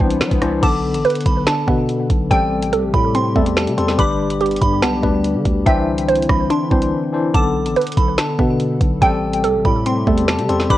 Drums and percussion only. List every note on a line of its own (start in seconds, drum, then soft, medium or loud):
0.10 closed hi-hat medium
0.21 finger snap medium
0.21 snare loud
0.31 kick loud
0.31 closed hi-hat medium
0.42 cross-stick loud
0.42 closed hi-hat medium
0.63 kick loud
0.63 closed hi-hat medium
0.63 crash loud
0.94 closed hi-hat medium
1.05 closed hi-hat medium
1.10 closed hi-hat medium
1.15 closed hi-hat medium
1.21 closed hi-hat medium
1.26 kick loud
1.26 closed hi-hat medium
1.47 finger snap medium
1.47 snare loud
1.47 closed hi-hat medium
1.68 kick loud
1.89 closed hi-hat medium
2.10 kick loud
2.10 closed hi-hat medium
2.31 kick loud
2.31 closed hi-hat medium
2.62 closed hi-hat medium
2.73 closed hi-hat medium
2.94 kick loud
3.15 closed hi-hat medium
3.36 kick medium
3.46 closed hi-hat medium
3.57 finger snap loud
3.57 snare loud
3.67 closed hi-hat medium
3.78 closed hi-hat medium
3.88 snare medium
3.99 kick loud
3.99 closed hi-hat medium
4.30 closed hi-hat loud
4.41 closed hi-hat medium
4.46 closed hi-hat medium
4.51 closed hi-hat medium
4.56 closed hi-hat medium
4.62 kick loud
4.62 closed hi-hat medium
4.83 finger snap medium
4.83 snare loud
4.83 closed hi-hat medium
5.04 kick loud
5.25 closed hi-hat medium
5.45 kick loud
5.45 closed hi-hat medium
5.67 kick loud
5.67 closed hi-hat medium
5.98 closed hi-hat medium
6.09 closed hi-hat medium
6.15 closed hi-hat medium
6.22 closed hi-hat medium
6.29 kick loud
6.29 cross-stick loud
6.50 closed hi-hat medium
6.71 kick loud
6.82 closed hi-hat medium
7.34 kick loud
7.34 closed hi-hat medium
7.66 closed hi-hat medium
7.76 closed hi-hat medium
7.81 closed hi-hat medium
7.87 closed hi-hat medium
7.92 closed hi-hat medium
7.97 kick loud
7.97 closed hi-hat medium
8.18 finger snap medium
8.18 snare loud
8.18 closed hi-hat medium
8.39 kick loud
8.60 closed hi-hat medium
8.81 kick loud
8.81 closed hi-hat medium
9.02 kick loud
9.02 closed hi-hat medium
9.34 closed hi-hat medium
9.44 closed hi-hat medium
9.65 kick loud
9.86 closed hi-hat medium
10.07 kick loud
10.17 closed hi-hat medium
10.28 finger snap loud
10.28 snare loud
10.38 closed hi-hat medium
10.49 closed hi-hat medium
10.60 snare medium
10.70 kick loud
10.70 closed hi-hat medium